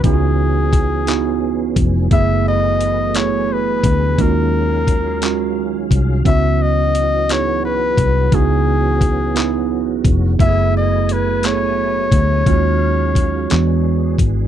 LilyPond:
<<
  \new Staff \with { instrumentName = "Flugelhorn" } { \time 6/8 \key cis \minor \tempo 4. = 58 gis'2~ gis'8 r8 | e''8 dis''4 cis''8 b'4 | ais'2~ ais'8 r8 | e''8 dis''4 cis''8 b'4 |
gis'2~ gis'8 r8 | e''8 dis''8 b'8 cis''4.~ | cis''2~ cis''8 r8 | }
  \new Staff \with { instrumentName = "Tine electric piano" } { \time 6/8 \key cis \minor <b dis' e' eis' fis'>4. <b dis' e' fis'>4. | <a b e' gis'>4. <a b e' gis'>4. | <gis cis' eis' fis'>4. <gis cis' eis' fis'>4. | <b cis' e' fis'>4. <b dis' e' gis'>4. |
<b dis' e' fis'>4. <b dis' e' gis'>4. | <a b e' fis' gis'>4. <a b e' gis' a'>4. | <gis cis' eis' fis'>4. <gis b d' fis'>4. | }
  \new Staff \with { instrumentName = "Tonewheel organ" } { \time 6/8 \key cis \minor gis'2. | b'2. | r2. | r2. |
r2. | b'2. | gis'2. | }
  \new Staff \with { instrumentName = "Tonewheel organ" } { \time 6/8 \key cis \minor <e b cis'>2. | <fis a>2. | <dis fis cis' eis''>2. | <e b cis' fis'>2.~ |
<e b cis' fis'>2. | <fis a e' gis''>2. | <dis fis cis' eis''>4. <e b d'>4. | }
  \new Staff \with { instrumentName = "Fingered electric bass" } { \clef bass \time 6/8 \key cis \minor cis,2~ cis,8 eis,,8 | fis,,2~ fis,,8 d,8 | dis,2~ dis,8 bis,,8 | cis,2~ cis,8 bis,,8 |
cis,2~ cis,8 eis,,8 | fis,,2~ fis,,8 d,8 | dis,4. e,4 gis,,8 | }
  \new DrumStaff \with { instrumentName = "Drums" } \drummode { \time 6/8 <hh bd>4 <hh bd>8 <hc hh>4 <hh bd>8 | <hh bd>4 hh8 <hc hh>4 <hh bd>8 | <hh bd>4 <hh bd>8 <hc hh>4 <hh bd>8 | <hh bd>4 hh8 <hc hh>4 <hh bd>8 |
<hh bd>4 <hh bd>8 <hc hh>4 <hh bd>8 | <hh bd>4 hh8 <hc hh>4 <hh bd>8 | <hh bd>4 <hh bd>8 <hc hh>4 <hh bd>8 | }
>>